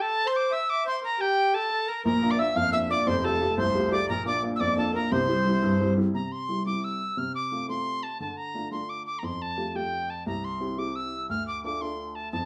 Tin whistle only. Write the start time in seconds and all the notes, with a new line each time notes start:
0.01 A5
0.27 C6
0.36 D6
0.53 E6
0.70 D6
0.87 C6
1.04 A#5
1.21 G5
1.54 A5
1.88 A#5
2.05 A#5
2.31 D6
2.39 E6
2.56 F6
2.73 E6
2.90 D6
3.07 C6
3.25 A5
3.58 C6
3.92 D6
4.09 A#5
4.27 D6
4.56 E6
4.60 D6
4.78 A5
4.95 A#5
5.12 C6
6.15 A#5
6.32 C6
6.67 D6
6.84 E6
7.18 F6
7.35 D6
7.69 C6
8.03 A5
8.21 A5
8.37 A#5
8.72 C6
8.89 D6
9.06 D6
9.19 A#5
9.25 C6
9.42 A5
9.76 G5
10.10 A5
10.27 A#5
10.44 C6
10.79 D6
10.96 E6
11.30 F6
11.48 D6
11.65 D6
11.81 C6
12.15 A5
12.32 A5